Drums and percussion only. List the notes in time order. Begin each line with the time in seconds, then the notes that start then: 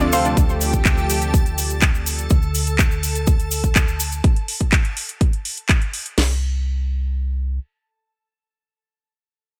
0.13 open hi-hat, shaker
0.25 closed hi-hat, shaker
0.37 kick, closed hi-hat, shaker
0.49 shaker
0.61 open hi-hat, shaker
0.73 kick, closed hi-hat, shaker
0.85 kick, clap, closed hi-hat, shaker
0.98 shaker
1.10 open hi-hat, shaker
1.22 closed hi-hat, shaker
1.34 kick, closed hi-hat, shaker
1.46 closed hi-hat, shaker
1.58 open hi-hat, shaker
1.70 closed hi-hat, shaker
1.82 kick, clap, closed hi-hat, shaker
1.95 shaker
2.06 open hi-hat, shaker
2.19 closed hi-hat, shaker
2.30 kick, closed hi-hat, shaker
2.42 shaker
2.55 open hi-hat, shaker
2.67 closed hi-hat, shaker
2.79 kick, clap, closed hi-hat, shaker
2.91 shaker
3.03 open hi-hat, shaker
3.15 closed hi-hat, shaker
3.27 kick, closed hi-hat, shaker
3.40 closed hi-hat, shaker
3.51 open hi-hat, shaker
3.64 kick, closed hi-hat, shaker
3.75 kick, clap, closed hi-hat, shaker
3.88 shaker
4.00 open hi-hat, shaker
4.12 closed hi-hat, shaker
4.24 kick, closed hi-hat
4.36 closed hi-hat
4.48 open hi-hat
4.61 kick, closed hi-hat
4.72 kick, clap, closed hi-hat
4.85 closed hi-hat
4.97 open hi-hat
5.09 closed hi-hat
5.21 kick, closed hi-hat
5.33 closed hi-hat
5.45 open hi-hat
5.57 closed hi-hat
5.69 kick, clap, closed hi-hat
5.82 closed hi-hat
5.94 open hi-hat
6.06 closed hi-hat
6.18 snare, crash